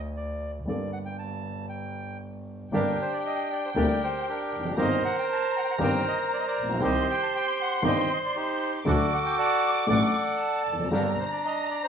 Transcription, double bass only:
Already playing: D2
0.66 G1
2.72 G1
3.75 D2
4.52 F1
4.78 G1
5.79 G1
6.57 A#1
6.82 C2
7.83 G1
8.85 D2
9.89 A1
10.66 F1
10.92 G1

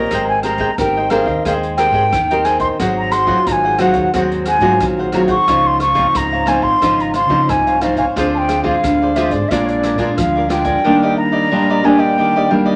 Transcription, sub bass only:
0.11 G#1
0.79 G#1
1.23 D#2
1.45 D#2
1.90 G#2
2.13 D#2
2.80 G#1
3.47 G#1
3.91 D#2
4.14 D#2
4.58 G#2
4.81 A#1
5.48 C#2
6.15 C#2
6.59 G#1
6.82 G#1
7.26 C#3
7.49 C2
8.17 D2
8.84 D2
9.28 G#2
9.51 A#1
9.95 A#2
10.18 D2

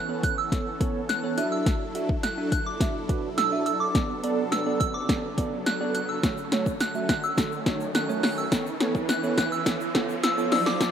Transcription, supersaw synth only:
Already playing: E3 B3 C#4 A4
1.37 F#3 D4 E4
3.95 F#3 B3
6.23 A3 C#4
8.52 E3 B3
10.52 F#3 D4 E4

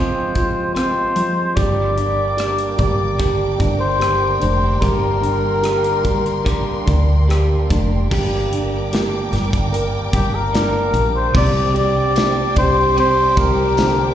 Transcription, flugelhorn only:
Already playing: C5
0.75 C5
1.56 D5
2.78 D5
3.80 C5
4.42 C5
4.81 A#4
10.14 G4
10.35 A#4
11.15 C5
11.36 D5
11.77 D5
12.58 C5
12.99 C5
13.39 A#4

